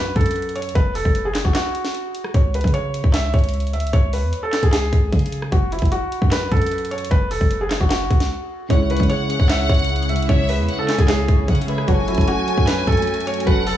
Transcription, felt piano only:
0, 0, Header, 1, 2, 480
1, 0, Start_track
1, 0, Key_signature, 4, "minor"
1, 0, Tempo, 397351
1, 911, Time_signature, 4, 2, 24, 8
1, 16634, End_track
2, 0, Start_track
2, 0, Title_t, "Felt piano"
2, 0, Program_c, 0, 0
2, 0, Note_on_c, 0, 71, 91
2, 167, Note_off_c, 0, 71, 0
2, 192, Note_on_c, 0, 69, 82
2, 643, Note_off_c, 0, 69, 0
2, 671, Note_on_c, 0, 73, 79
2, 885, Note_off_c, 0, 73, 0
2, 909, Note_on_c, 0, 71, 92
2, 1124, Note_off_c, 0, 71, 0
2, 1150, Note_on_c, 0, 69, 77
2, 1489, Note_off_c, 0, 69, 0
2, 1513, Note_on_c, 0, 68, 76
2, 1726, Note_off_c, 0, 68, 0
2, 1746, Note_on_c, 0, 66, 72
2, 1848, Note_off_c, 0, 66, 0
2, 1866, Note_on_c, 0, 66, 84
2, 2780, Note_off_c, 0, 66, 0
2, 2835, Note_on_c, 0, 73, 72
2, 3048, Note_off_c, 0, 73, 0
2, 3079, Note_on_c, 0, 71, 78
2, 3290, Note_off_c, 0, 71, 0
2, 3307, Note_on_c, 0, 73, 90
2, 3760, Note_off_c, 0, 73, 0
2, 3792, Note_on_c, 0, 76, 91
2, 4006, Note_off_c, 0, 76, 0
2, 4031, Note_on_c, 0, 73, 80
2, 4482, Note_off_c, 0, 73, 0
2, 4511, Note_on_c, 0, 76, 78
2, 4725, Note_off_c, 0, 76, 0
2, 4749, Note_on_c, 0, 73, 90
2, 4964, Note_off_c, 0, 73, 0
2, 4994, Note_on_c, 0, 71, 75
2, 5331, Note_off_c, 0, 71, 0
2, 5351, Note_on_c, 0, 69, 82
2, 5565, Note_off_c, 0, 69, 0
2, 5594, Note_on_c, 0, 68, 75
2, 5690, Note_off_c, 0, 68, 0
2, 5708, Note_on_c, 0, 68, 95
2, 6621, Note_off_c, 0, 68, 0
2, 6666, Note_on_c, 0, 66, 79
2, 6882, Note_off_c, 0, 66, 0
2, 6914, Note_on_c, 0, 64, 76
2, 7127, Note_off_c, 0, 64, 0
2, 7147, Note_on_c, 0, 66, 91
2, 7600, Note_off_c, 0, 66, 0
2, 7633, Note_on_c, 0, 71, 92
2, 7847, Note_off_c, 0, 71, 0
2, 7870, Note_on_c, 0, 69, 81
2, 8322, Note_off_c, 0, 69, 0
2, 8350, Note_on_c, 0, 73, 82
2, 8564, Note_off_c, 0, 73, 0
2, 8587, Note_on_c, 0, 71, 93
2, 8803, Note_off_c, 0, 71, 0
2, 8830, Note_on_c, 0, 69, 75
2, 9168, Note_off_c, 0, 69, 0
2, 9192, Note_on_c, 0, 68, 76
2, 9406, Note_off_c, 0, 68, 0
2, 9426, Note_on_c, 0, 66, 74
2, 9528, Note_off_c, 0, 66, 0
2, 9546, Note_on_c, 0, 66, 86
2, 10460, Note_off_c, 0, 66, 0
2, 10516, Note_on_c, 0, 73, 73
2, 10728, Note_off_c, 0, 73, 0
2, 10759, Note_on_c, 0, 71, 78
2, 10969, Note_off_c, 0, 71, 0
2, 10987, Note_on_c, 0, 73, 94
2, 11440, Note_off_c, 0, 73, 0
2, 11474, Note_on_c, 0, 76, 93
2, 11687, Note_off_c, 0, 76, 0
2, 11711, Note_on_c, 0, 73, 82
2, 12162, Note_off_c, 0, 73, 0
2, 12191, Note_on_c, 0, 76, 80
2, 12405, Note_off_c, 0, 76, 0
2, 12430, Note_on_c, 0, 73, 99
2, 12645, Note_off_c, 0, 73, 0
2, 12676, Note_on_c, 0, 71, 78
2, 13012, Note_off_c, 0, 71, 0
2, 13032, Note_on_c, 0, 69, 81
2, 13246, Note_off_c, 0, 69, 0
2, 13275, Note_on_c, 0, 68, 75
2, 13370, Note_off_c, 0, 68, 0
2, 13388, Note_on_c, 0, 68, 99
2, 14301, Note_off_c, 0, 68, 0
2, 14348, Note_on_c, 0, 66, 81
2, 14563, Note_off_c, 0, 66, 0
2, 14596, Note_on_c, 0, 64, 78
2, 14808, Note_off_c, 0, 64, 0
2, 14830, Note_on_c, 0, 66, 95
2, 15281, Note_off_c, 0, 66, 0
2, 15315, Note_on_c, 0, 71, 94
2, 15527, Note_off_c, 0, 71, 0
2, 15551, Note_on_c, 0, 69, 81
2, 16002, Note_off_c, 0, 69, 0
2, 16031, Note_on_c, 0, 73, 80
2, 16245, Note_off_c, 0, 73, 0
2, 16268, Note_on_c, 0, 71, 96
2, 16483, Note_off_c, 0, 71, 0
2, 16510, Note_on_c, 0, 69, 80
2, 16634, Note_off_c, 0, 69, 0
2, 16634, End_track
0, 0, End_of_file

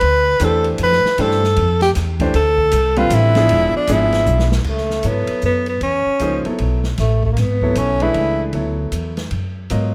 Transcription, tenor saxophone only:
0, 0, Header, 1, 2, 480
1, 0, Start_track
1, 0, Tempo, 386598
1, 29, Time_signature, 3, 2, 24, 8
1, 12349, End_track
2, 0, Start_track
2, 0, Title_t, "Tenor saxophone"
2, 0, Program_c, 0, 66
2, 0, Note_on_c, 0, 71, 110
2, 547, Note_on_c, 0, 69, 94
2, 565, Note_off_c, 0, 71, 0
2, 832, Note_off_c, 0, 69, 0
2, 1031, Note_on_c, 0, 71, 119
2, 1499, Note_on_c, 0, 69, 98
2, 1518, Note_off_c, 0, 71, 0
2, 2251, Note_off_c, 0, 69, 0
2, 2258, Note_on_c, 0, 67, 112
2, 2360, Note_off_c, 0, 67, 0
2, 2928, Note_on_c, 0, 69, 111
2, 3701, Note_on_c, 0, 65, 104
2, 3719, Note_off_c, 0, 69, 0
2, 3903, Note_on_c, 0, 64, 124
2, 3921, Note_off_c, 0, 65, 0
2, 4667, Note_off_c, 0, 64, 0
2, 4673, Note_on_c, 0, 62, 103
2, 4870, Note_on_c, 0, 64, 104
2, 4889, Note_off_c, 0, 62, 0
2, 5631, Note_off_c, 0, 64, 0
2, 5812, Note_on_c, 0, 57, 79
2, 6306, Note_on_c, 0, 59, 92
2, 6324, Note_off_c, 0, 57, 0
2, 6764, Note_off_c, 0, 59, 0
2, 6771, Note_on_c, 0, 59, 93
2, 7042, Note_off_c, 0, 59, 0
2, 7065, Note_on_c, 0, 59, 81
2, 7220, Note_off_c, 0, 59, 0
2, 7235, Note_on_c, 0, 61, 93
2, 7965, Note_off_c, 0, 61, 0
2, 8688, Note_on_c, 0, 57, 80
2, 8961, Note_off_c, 0, 57, 0
2, 9000, Note_on_c, 0, 57, 78
2, 9083, Note_off_c, 0, 57, 0
2, 9090, Note_on_c, 0, 58, 62
2, 9182, Note_on_c, 0, 59, 86
2, 9201, Note_off_c, 0, 58, 0
2, 9652, Note_on_c, 0, 61, 97
2, 9671, Note_off_c, 0, 59, 0
2, 9962, Note_on_c, 0, 64, 91
2, 9981, Note_off_c, 0, 61, 0
2, 10603, Note_off_c, 0, 64, 0
2, 12349, End_track
0, 0, End_of_file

